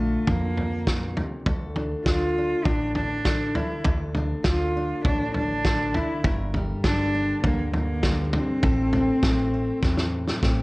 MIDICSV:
0, 0, Header, 1, 5, 480
1, 0, Start_track
1, 0, Key_signature, -1, "minor"
1, 0, Tempo, 597015
1, 1181, Time_signature, 4, 2, 24, 8
1, 8543, End_track
2, 0, Start_track
2, 0, Title_t, "Cello"
2, 0, Program_c, 0, 42
2, 0, Note_on_c, 0, 57, 83
2, 244, Note_on_c, 0, 58, 76
2, 256, Note_off_c, 0, 57, 0
2, 952, Note_off_c, 0, 58, 0
2, 1658, Note_on_c, 0, 65, 88
2, 2131, Note_on_c, 0, 62, 82
2, 2143, Note_off_c, 0, 65, 0
2, 2370, Note_off_c, 0, 62, 0
2, 2375, Note_on_c, 0, 62, 78
2, 2856, Note_on_c, 0, 64, 64
2, 2868, Note_off_c, 0, 62, 0
2, 3098, Note_off_c, 0, 64, 0
2, 3588, Note_on_c, 0, 65, 85
2, 4032, Note_off_c, 0, 65, 0
2, 4067, Note_on_c, 0, 62, 78
2, 4287, Note_off_c, 0, 62, 0
2, 4309, Note_on_c, 0, 62, 89
2, 4788, Note_on_c, 0, 64, 73
2, 4800, Note_off_c, 0, 62, 0
2, 5025, Note_off_c, 0, 64, 0
2, 5514, Note_on_c, 0, 62, 98
2, 5956, Note_off_c, 0, 62, 0
2, 5985, Note_on_c, 0, 58, 78
2, 6207, Note_off_c, 0, 58, 0
2, 6237, Note_on_c, 0, 58, 77
2, 6678, Note_off_c, 0, 58, 0
2, 6700, Note_on_c, 0, 60, 84
2, 8352, Note_off_c, 0, 60, 0
2, 8543, End_track
3, 0, Start_track
3, 0, Title_t, "Steel-string acoustic guitar"
3, 0, Program_c, 1, 25
3, 0, Note_on_c, 1, 50, 50
3, 0, Note_on_c, 1, 53, 54
3, 0, Note_on_c, 1, 62, 45
3, 0, Note_on_c, 1, 65, 56
3, 218, Note_off_c, 1, 53, 0
3, 221, Note_on_c, 1, 53, 53
3, 695, Note_off_c, 1, 53, 0
3, 698, Note_on_c, 1, 46, 53
3, 936, Note_off_c, 1, 46, 0
3, 939, Note_on_c, 1, 48, 49
3, 1178, Note_on_c, 1, 38, 55
3, 1180, Note_off_c, 1, 48, 0
3, 1189, Note_on_c, 1, 69, 54
3, 1418, Note_off_c, 1, 62, 0
3, 1421, Note_on_c, 1, 62, 44
3, 1659, Note_off_c, 1, 50, 0
3, 1662, Note_on_c, 1, 50, 55
3, 1911, Note_off_c, 1, 62, 0
3, 1914, Note_on_c, 1, 62, 48
3, 2146, Note_on_c, 1, 45, 56
3, 2614, Note_off_c, 1, 50, 0
3, 2623, Note_off_c, 1, 45, 0
3, 2623, Note_off_c, 1, 62, 0
3, 2624, Note_on_c, 1, 50, 50
3, 2626, Note_on_c, 1, 62, 50
3, 2797, Note_off_c, 1, 65, 0
3, 2860, Note_off_c, 1, 62, 0
3, 2864, Note_on_c, 1, 62, 50
3, 3075, Note_off_c, 1, 69, 0
3, 3089, Note_off_c, 1, 38, 0
3, 3099, Note_on_c, 1, 38, 55
3, 3104, Note_on_c, 1, 69, 53
3, 3346, Note_off_c, 1, 62, 0
3, 3349, Note_on_c, 1, 62, 50
3, 3577, Note_off_c, 1, 50, 0
3, 3587, Note_on_c, 1, 50, 52
3, 3830, Note_off_c, 1, 62, 0
3, 3834, Note_on_c, 1, 62, 48
3, 4064, Note_on_c, 1, 45, 55
3, 4540, Note_off_c, 1, 50, 0
3, 4543, Note_off_c, 1, 45, 0
3, 4548, Note_off_c, 1, 62, 0
3, 4549, Note_on_c, 1, 50, 57
3, 4557, Note_on_c, 1, 62, 47
3, 4789, Note_off_c, 1, 62, 0
3, 4799, Note_on_c, 1, 62, 55
3, 4994, Note_off_c, 1, 69, 0
3, 5001, Note_off_c, 1, 62, 0
3, 5021, Note_off_c, 1, 38, 0
3, 5032, Note_on_c, 1, 43, 61
3, 5036, Note_on_c, 1, 70, 56
3, 5275, Note_on_c, 1, 55, 49
3, 5494, Note_off_c, 1, 50, 0
3, 5504, Note_on_c, 1, 50, 54
3, 5745, Note_on_c, 1, 62, 54
3, 5974, Note_off_c, 1, 50, 0
3, 5984, Note_on_c, 1, 50, 54
3, 6448, Note_off_c, 1, 50, 0
3, 6451, Note_off_c, 1, 55, 0
3, 6457, Note_on_c, 1, 50, 61
3, 6462, Note_on_c, 1, 55, 50
3, 6691, Note_off_c, 1, 62, 0
3, 6701, Note_on_c, 1, 62, 51
3, 6914, Note_off_c, 1, 62, 0
3, 6920, Note_off_c, 1, 43, 0
3, 6922, Note_off_c, 1, 70, 0
3, 6937, Note_on_c, 1, 45, 60
3, 6941, Note_off_c, 1, 50, 0
3, 6941, Note_on_c, 1, 69, 59
3, 6942, Note_off_c, 1, 55, 0
3, 7190, Note_on_c, 1, 60, 49
3, 7420, Note_on_c, 1, 57, 53
3, 7668, Note_on_c, 1, 64, 48
3, 7892, Note_off_c, 1, 45, 0
3, 7901, Note_on_c, 1, 45, 54
3, 8376, Note_off_c, 1, 57, 0
3, 8382, Note_off_c, 1, 60, 0
3, 8386, Note_on_c, 1, 57, 55
3, 8392, Note_on_c, 1, 60, 53
3, 8543, Note_off_c, 1, 45, 0
3, 8543, Note_off_c, 1, 57, 0
3, 8543, Note_off_c, 1, 60, 0
3, 8543, Note_off_c, 1, 64, 0
3, 8543, Note_off_c, 1, 69, 0
3, 8543, End_track
4, 0, Start_track
4, 0, Title_t, "Upright bass"
4, 0, Program_c, 2, 32
4, 0, Note_on_c, 2, 34, 75
4, 118, Note_off_c, 2, 34, 0
4, 221, Note_on_c, 2, 41, 69
4, 973, Note_off_c, 2, 41, 0
4, 1177, Note_on_c, 2, 38, 86
4, 1555, Note_off_c, 2, 38, 0
4, 1656, Note_on_c, 2, 38, 72
4, 2034, Note_off_c, 2, 38, 0
4, 2134, Note_on_c, 2, 33, 68
4, 2889, Note_off_c, 2, 33, 0
4, 3096, Note_on_c, 2, 38, 85
4, 3474, Note_off_c, 2, 38, 0
4, 3576, Note_on_c, 2, 38, 81
4, 3954, Note_off_c, 2, 38, 0
4, 4059, Note_on_c, 2, 33, 81
4, 4813, Note_off_c, 2, 33, 0
4, 5021, Note_on_c, 2, 31, 87
4, 5398, Note_off_c, 2, 31, 0
4, 5499, Note_on_c, 2, 31, 75
4, 5877, Note_off_c, 2, 31, 0
4, 5978, Note_on_c, 2, 38, 79
4, 6734, Note_off_c, 2, 38, 0
4, 6941, Note_on_c, 2, 33, 82
4, 7319, Note_off_c, 2, 33, 0
4, 7419, Note_on_c, 2, 33, 83
4, 7798, Note_off_c, 2, 33, 0
4, 7902, Note_on_c, 2, 40, 77
4, 8280, Note_off_c, 2, 40, 0
4, 8383, Note_on_c, 2, 33, 72
4, 8543, Note_off_c, 2, 33, 0
4, 8543, End_track
5, 0, Start_track
5, 0, Title_t, "Drums"
5, 220, Note_on_c, 9, 43, 89
5, 221, Note_on_c, 9, 36, 79
5, 300, Note_off_c, 9, 43, 0
5, 301, Note_off_c, 9, 36, 0
5, 461, Note_on_c, 9, 43, 54
5, 542, Note_off_c, 9, 43, 0
5, 700, Note_on_c, 9, 36, 82
5, 700, Note_on_c, 9, 38, 87
5, 780, Note_off_c, 9, 36, 0
5, 780, Note_off_c, 9, 38, 0
5, 940, Note_on_c, 9, 43, 68
5, 1021, Note_off_c, 9, 43, 0
5, 1176, Note_on_c, 9, 43, 93
5, 1177, Note_on_c, 9, 36, 100
5, 1257, Note_off_c, 9, 43, 0
5, 1258, Note_off_c, 9, 36, 0
5, 1415, Note_on_c, 9, 43, 64
5, 1495, Note_off_c, 9, 43, 0
5, 1657, Note_on_c, 9, 36, 94
5, 1658, Note_on_c, 9, 38, 80
5, 1738, Note_off_c, 9, 36, 0
5, 1738, Note_off_c, 9, 38, 0
5, 2134, Note_on_c, 9, 43, 78
5, 2135, Note_on_c, 9, 36, 91
5, 2214, Note_off_c, 9, 43, 0
5, 2216, Note_off_c, 9, 36, 0
5, 2373, Note_on_c, 9, 43, 60
5, 2453, Note_off_c, 9, 43, 0
5, 2613, Note_on_c, 9, 38, 81
5, 2615, Note_on_c, 9, 36, 89
5, 2694, Note_off_c, 9, 38, 0
5, 2696, Note_off_c, 9, 36, 0
5, 2854, Note_on_c, 9, 43, 72
5, 2935, Note_off_c, 9, 43, 0
5, 3091, Note_on_c, 9, 43, 89
5, 3096, Note_on_c, 9, 36, 97
5, 3171, Note_off_c, 9, 43, 0
5, 3176, Note_off_c, 9, 36, 0
5, 3334, Note_on_c, 9, 43, 63
5, 3415, Note_off_c, 9, 43, 0
5, 3572, Note_on_c, 9, 38, 85
5, 3577, Note_on_c, 9, 36, 84
5, 3652, Note_off_c, 9, 38, 0
5, 3657, Note_off_c, 9, 36, 0
5, 4060, Note_on_c, 9, 36, 91
5, 4060, Note_on_c, 9, 43, 94
5, 4140, Note_off_c, 9, 36, 0
5, 4140, Note_off_c, 9, 43, 0
5, 4297, Note_on_c, 9, 43, 57
5, 4378, Note_off_c, 9, 43, 0
5, 4541, Note_on_c, 9, 36, 87
5, 4543, Note_on_c, 9, 38, 85
5, 4622, Note_off_c, 9, 36, 0
5, 4623, Note_off_c, 9, 38, 0
5, 4780, Note_on_c, 9, 43, 68
5, 4861, Note_off_c, 9, 43, 0
5, 5020, Note_on_c, 9, 43, 96
5, 5021, Note_on_c, 9, 36, 99
5, 5101, Note_off_c, 9, 43, 0
5, 5102, Note_off_c, 9, 36, 0
5, 5259, Note_on_c, 9, 43, 74
5, 5340, Note_off_c, 9, 43, 0
5, 5499, Note_on_c, 9, 38, 94
5, 5500, Note_on_c, 9, 36, 90
5, 5579, Note_off_c, 9, 38, 0
5, 5581, Note_off_c, 9, 36, 0
5, 5978, Note_on_c, 9, 43, 90
5, 5979, Note_on_c, 9, 36, 85
5, 6058, Note_off_c, 9, 43, 0
5, 6060, Note_off_c, 9, 36, 0
5, 6218, Note_on_c, 9, 43, 63
5, 6298, Note_off_c, 9, 43, 0
5, 6455, Note_on_c, 9, 38, 86
5, 6458, Note_on_c, 9, 36, 76
5, 6535, Note_off_c, 9, 38, 0
5, 6538, Note_off_c, 9, 36, 0
5, 6698, Note_on_c, 9, 43, 84
5, 6778, Note_off_c, 9, 43, 0
5, 6938, Note_on_c, 9, 43, 98
5, 6939, Note_on_c, 9, 36, 105
5, 7018, Note_off_c, 9, 43, 0
5, 7020, Note_off_c, 9, 36, 0
5, 7179, Note_on_c, 9, 43, 65
5, 7259, Note_off_c, 9, 43, 0
5, 7420, Note_on_c, 9, 36, 89
5, 7422, Note_on_c, 9, 38, 80
5, 7501, Note_off_c, 9, 36, 0
5, 7502, Note_off_c, 9, 38, 0
5, 7901, Note_on_c, 9, 36, 82
5, 7901, Note_on_c, 9, 38, 45
5, 7981, Note_off_c, 9, 36, 0
5, 7982, Note_off_c, 9, 38, 0
5, 8020, Note_on_c, 9, 38, 46
5, 8101, Note_off_c, 9, 38, 0
5, 8262, Note_on_c, 9, 38, 50
5, 8342, Note_off_c, 9, 38, 0
5, 8384, Note_on_c, 9, 36, 81
5, 8385, Note_on_c, 9, 38, 63
5, 8464, Note_off_c, 9, 36, 0
5, 8466, Note_off_c, 9, 38, 0
5, 8543, End_track
0, 0, End_of_file